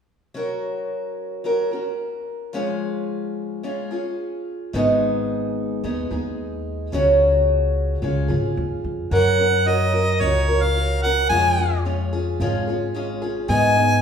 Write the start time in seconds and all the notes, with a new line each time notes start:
0.34 F#3 C#4 F#4 A#4
1.44 F#3 C#4 F#4 A#4
1.71 C#4 F#4 A#4
2.53 F3 G#3 C#4 F4 G#4
3.63 G#3 C#4 F4 G#4
3.91 C#4 F4 G#4
4.73 G#1 G#2 D#3 G#3 B3 D#4 G#4
5.84 D#2 G#3 B3 D#4 G#4
6.11 D#2 G#3 B3 D#4 G#4
6.92 C#2 C#3 F#3 C#4 F#4 G#4
8.02 C#2 G#3 C#4 F4 G#4
8.28 G#1 C#4 F4 G#4
8.57 D#2
8.84 F2
9.11 F#2 F#3 C#4 F#4 A#4 F#5
9.39 C#4 F#4 A#4
9.65 F#3 C#4 F#4 A#4 D#5
9.93 C#4 F#4 A#4
10.20 C#2 F#3 C#4 F#4 A#4 C#5
10.48 C#4 F#4 A#4
10.62 F5
10.76 F#3 C#4 F#4 A#4
11.03 C#4 F#4 A#4 F#5
11.29 F2 F3 G#3 C#4 F4 G#4 G#5
11.58 C#4 F4 G#4
11.85 G#3 C#4 F4 G#4
12.13 C#4 F4 G#4
12.40 G#1 F3 G#3 C#4 F4 G#4
12.68 C#4 F4 G#4
12.94 G#3 C#4 F4 G#4
13.22 C#4 F4 G#4
13.48 G#2 D#3 G#3 B3 D#4 G#4 G#5
13.76 G#3 B3 D#4 G#4